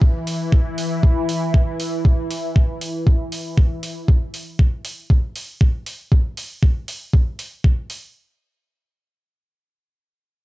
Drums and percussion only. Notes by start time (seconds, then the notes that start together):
0.02 kick
0.27 open hi-hat
0.52 kick
0.78 open hi-hat
1.03 kick
1.29 open hi-hat
1.54 kick
1.80 open hi-hat
2.05 kick
2.31 open hi-hat
2.56 kick
2.81 open hi-hat
3.07 kick
3.32 open hi-hat
3.58 kick
3.83 open hi-hat
4.08 kick
4.34 open hi-hat
4.59 kick
4.85 open hi-hat
5.10 kick
5.36 open hi-hat
5.61 kick
5.86 open hi-hat
6.12 kick
6.37 open hi-hat
6.63 kick
6.88 open hi-hat
7.13 kick
7.39 open hi-hat
7.64 kick
7.90 open hi-hat